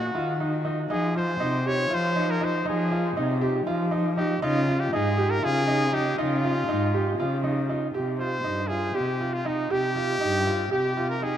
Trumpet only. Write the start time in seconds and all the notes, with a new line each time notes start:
Already playing: F#4
0.91 G#4
1.17 C5
1.67 C#5
1.94 C5
2.31 A#4
2.44 C5
2.69 G#4
4.17 G4
4.43 F4
4.80 G4
4.94 G#4
5.30 A#4
5.44 G#4
5.94 G4
6.19 F4
8.20 C5
8.68 G#4
8.95 G4
9.33 F4
9.47 D#4
9.71 G4
10.72 G4
11.10 A#4
11.23 G#4